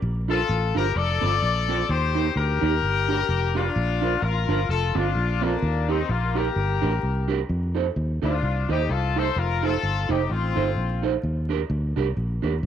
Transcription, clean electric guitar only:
0.28 D4 F4 A#4
0.75 D4 F4 A#4
1.21 C4 F4 A4
1.68 C4 F4 A4
2.15 D#4 G4 A#4
2.61 D#4 G4 A#4
3.08 D4 G4 A#4
3.55 D4 G4 A#4
4.01 D4 F4 A#4
4.48 D4 F4 A#4
4.95 C4 F4 A4
5.41 C4 F4 A4
5.89 D#4 G4 A#4
6.35 D#4 G4 A#4
6.55 muted clean electric guitar stroke
6.82 D4 G4 A#4
7.28 D4 G4 A#4
7.75 D#4 A4 C5
8.22 D#4 A4 C5
8.69 D#4 A4 C5
9.16 D#4 A4 C5
9.63 D#4 A4 C5
10.09 D#4 A4 C5
10.55 D#4 A4 C5
11.03 D#4 A4 C5
11.49 D4 G4 A#4
11.96 D4 G4 A#4
12.42 D4 G4 A#4

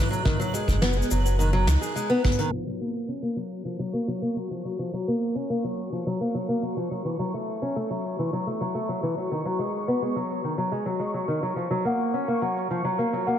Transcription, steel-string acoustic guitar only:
0.11 F#3
0.25 D#3
0.40 F#3
0.54 G#3
0.82 B3
0.97 G#3
1.11 F#3
1.39 D#3
1.53 F#3
1.68 D#4
1.81 G#4
1.96 G#3
2.10 B3
2.24 B3
2.39 D#3
2.52 F3
2.67 F#3
2.81 A#3
3.08 C#4
3.22 A#3
3.36 F#3
3.65 F3
3.79 F#3
3.93 A#3
4.08 F#3
4.22 A#3
4.36 F#3
4.51 F3
4.65 F#3
4.79 F3
4.93 F#3
5.08 A#3
5.35 C#4
5.50 A#3
5.64 F#3
5.92 F3
6.07 F#3
6.21 A#3
6.35 F#3
6.49 A#3
6.63 F#3
6.76 F3
6.91 F#3
7.05 E3
7.19 F#3
7.34 A3
7.62 C#4
7.76 A3
7.90 F#3
8.19 E3
8.33 F#3
8.47 A3
8.61 F#3
8.75 A3
8.89 F#3
9.03 E3
9.17 F#3
9.31 D#3
9.45 F#3
9.59 G#3
9.88 B3
10.02 G#3
10.16 F#3
10.44 D#3
10.58 F#3
10.72 G#3
10.86 F#3
10.99 G#3
11.14 F#3
11.28 D#3
11.43 F#3
11.56 F3
11.71 F#3
11.85 A#3
12.14 C#4
12.28 A#3
12.42 F#3
12.70 F3
12.84 F#3
12.98 A#3
13.13 F#3
13.27 A#3

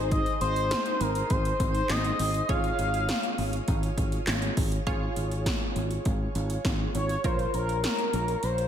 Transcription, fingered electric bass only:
Already playing: G#1
0.41 G#1
1.01 G#1
1.30 G#1
1.60 G#1
1.90 G#1
2.19 G#1
2.49 G#1
2.79 G#1
3.38 G#1
3.68 G#1
3.98 G#1
4.27 G#1
4.57 G#1
4.87 G#1
5.17 G#1
5.76 G#1
6.06 G#1
6.35 G#1
6.65 G#1
6.95 G#1
7.24 A#1
7.54 A#1
8.13 A#1
8.43 A#1

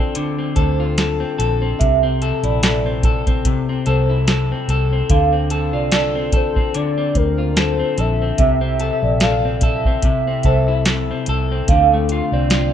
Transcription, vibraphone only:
0.56 C5
1.79 E5
2.44 D5
3.86 C5
5.10 F5
5.73 D5
7.15 C5
8.39 E5
9.03 D5
10.45 C5
11.69 F5
12.33 D5

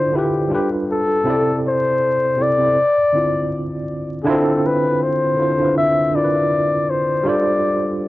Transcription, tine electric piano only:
Already playing: D3 D4 E4 F4 C5 D5
0.12 D3 D4 E4
0.17 F4 B4
0.48 G3 D4 F4
0.53 A4 B4
1.24 C3 C4 E4
1.28 A4 D5
2.37 C3 C4 E4
2.41 A4 D5
2.58 C3 C4 E4
2.63 A4 D5
3.13 D3 C4 E4
3.17 F4 D5
4.24 D3 D4 E4
4.28 C4 F4
5.37 D3 D4 E4
5.41 F4 C5
5.58 D3 D4 E4
5.63 F4 B4
6.12 D3 D4 E4
6.17 F4 A#4
6.24 B4
7.23 G3 D4 F4
7.27 A4 C5

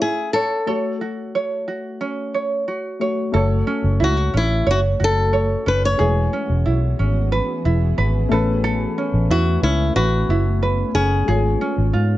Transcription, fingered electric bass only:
3.34 F#1
3.84 F#1
4.01 C#2
4.34 A1
4.66 F#1
5.00 F#1
5.67 F#1
6.00 E1
6.49 E1
6.66 B1
6.99 G#1
7.65 E1
7.98 G#1
8.31 A1
9.13 A1
9.30 E2
9.62 C#2
9.96 A1
10.28 F#1
10.94 F#1
11.28 G#1
11.78 G#1
11.94 G#2

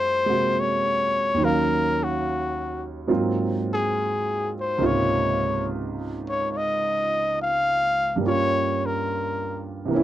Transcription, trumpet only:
Already playing: C5
0.60 C#5
1.44 A#4
2.03 F#4
3.73 G#4
4.60 C5
4.86 C#5
6.29 C#5
6.51 C#5
6.57 D#5
7.42 F5
8.27 C#5
8.86 A#4

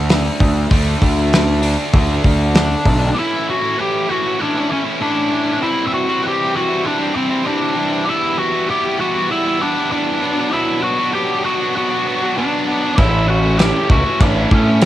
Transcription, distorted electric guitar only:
Already playing: D3 A3 D4
0.70 D3 A3 D4
1.62 D3 A3 D4
3.15 A2 E3 A3 C#4 E4
3.61 A3 C#4 E4
3.76 A2 E3 A3 C#4 E4
4.08 E3 A3 C#4 E4
4.22 A3 C#4 E4
4.38 E3 A3 C#4 E4
4.55 A3 C#4 E4
4.68 E3 A3 C#4 E4
4.84 A3 C#4 E4
5.00 A2 E3 A3 C#4 E4
5.29 E3 A3 C#4 E4
5.44 A3 C#4 E4
5.59 C3 E3 G3 C4 E4
6.06 G3 C4 E4
6.22 C3 E3 G3 C4 E4
6.53 E3 G3 C4 E4
6.68 G3 C4 E4
6.84 E3 G3 C4 E4
6.99 G3 C4 E4
7.14 E3 G3 C4 E4
7.30 G3 C4 E4
7.45 C3 E3 G3 C4 E4
7.76 E3 G3 C4 E4
7.90 G3 C4 E4
8.05 E3 G3 B3 E4
8.52 G3 B3 E4
8.67 E3 G3 B3 E4
8.99 E3 G3 B3 E4
9.14 G3 B3 E4
9.29 E3 G3 B3 E4
9.45 G3 B3 E4
9.59 E3 G3 B3 E4
9.75 G3 B3 E4
9.90 E3 G3 B3 E4
10.21 B2 F#3 B3 D4
10.35 F#3 B3 D4
10.51 B2 F#3 B3 D4
10.97 F#3 B3 D4
11.12 B2 F#3 B3 D4
11.43 B2 F#3 B3 D4
11.59 F#3 B3 D4
11.75 B2 F#3 B3 D4
11.90 F#3 B3 D4
12.06 B2 F#3 B3 D4
12.21 F#3 B3 D4
12.36 B2 F#3 B3 D4
12.67 B2 F#3 B3 D4
12.82 F#3 B3 D4
12.97 A2 E3 A3 C#4 E4
13.43 A3 C#4 E4
13.58 A2 E3 A3 C#4 E4
13.88 E3 A3 C#4 E4
14.04 A3 C#4 E4
14.20 E3 A3 C#4 E4
14.35 A3 C#4 E4
14.51 E3 A3 C#4 E4
14.65 A3 C#4 E4
14.81 A2 E3 A3

